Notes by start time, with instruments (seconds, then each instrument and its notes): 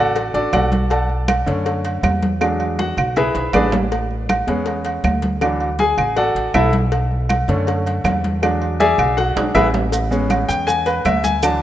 Already playing: upright bass A1, upright piano F#4 A4 D5 F#5
0.16 cowbell, high conga, low agogo
0.34 upright bass A1, upright piano D4 F#4 A4 D5, cowbell, high conga
0.53 upright bass B1, upright piano F#4 A4 D5 F#5, cowbell, high conga, low timbale, low agogo, claves
0.72 cowbell, high conga
0.90 upright piano A4 D5 F#5 A5, cowbell, low agogo
1.10 high conga
1.28 cowbell, high conga, low timbale, low agogo, claves
1.46 upright bass F#2, upright piano D3 A3 C#4, cowbell, high conga
1.66 cowbell, high conga, low agogo
1.85 cowbell, high conga, low agogo
2.03 upright bass E2, cowbell, high conga, low timbale, low agogo, claves
2.22 cowbell, high conga
2.41 upright piano F#3 G#3 D4, cowbell, low agogo, claves
2.60 high conga, low agogo
2.79 upright piano F#4 F#5, cowbell, high conga, low timbale
2.97 upright bass B1, high conga, low conga, low agogo, claves
3.16 upright piano E4 G#4 B4 E5, cowbell, high conga, low conga, low agogo
3.35 upright bass B1, cowbell, high conga, high timbale
3.53 upright bass A1, upright piano D4 G#4 B4 D5, cowbell, high conga, low timbale, low agogo, claves
3.72 cowbell, high conga, low timbale
3.92 cowbell, high conga, low agogo
4.11 high conga
4.29 cowbell, high conga, low timbale, low agogo, claves
4.47 upright bass E2, upright piano G#3 B3 C#4, cowbell
4.66 cowbell, high conga, low agogo
4.85 cowbell, high conga, low agogo
5.04 upright bass D2, cowbell, high conga, low timbale, low agogo, claves
5.22 cowbell, high conga
5.41 upright piano E3 F#3 D4, cowbell, high conga, low agogo, claves
5.60 high conga, low agogo
5.79 upright piano G#4 G#5, cowbell, high conga, low timbale
5.97 upright bass A1, high conga, low conga, low agogo, claves
6.16 upright piano F#4 A4 D5 F#5, cowbell, high conga, low agogo
6.35 upright bass A1, cowbell, high conga
6.54 upright bass B1, upright piano E4 A4 E5, cowbell, high conga, low timbale, low agogo, claves
6.73 cowbell, high conga
6.92 cowbell, high conga, low agogo
7.12 high conga
7.29 cowbell, high conga, low timbale, low agogo, claves
7.48 upright bass F#2, upright piano D3 A3 C#4, cowbell, high conga
7.67 cowbell, high conga, low agogo
7.86 cowbell, high conga, low agogo
8.04 upright bass E2, cowbell, high conga, low timbale, low agogo, claves
8.24 cowbell, high conga
8.42 upright piano F#3 G#3 D4, cowbell, high conga, low agogo, claves
8.62 high conga, low agogo
8.80 upright piano G#4 D5 E5 G#5, cowbell, high conga, low timbale
8.98 upright bass B1, high conga, low conga, low agogo, claves
9.17 upright piano F#4 F#5, cowbell, high conga, low agogo
9.36 upright bass B1, upright piano F#3 G#3 D4, cowbell, high conga, high timbale
9.55 upright bass A1, upright piano E4 G#4 B4 E5, cowbell, high conga, low agogo, claves
9.74 cowbell, high conga, low timbale
9.92 cowbell, high conga, low agogo, maracas
10.11 upright piano G#3 B3 C#4, high conga, maracas
10.30 cowbell, high conga, low timbale, low agogo, claves, maracas
10.49 upright bass E2, upright piano G5, cowbell, high conga, maracas
10.67 upright piano G#5, cowbell, high conga, low agogo, maracas
10.86 upright piano B4, cowbell, high conga, low agogo, maracas
11.05 upright bass D2, upright piano E5, cowbell, high conga, low timbale, low agogo, claves, maracas
11.24 upright piano G#5, cowbell, high conga, maracas
11.42 upright piano E3 F#3 D4 A5, cowbell, high conga, low agogo, claves, maracas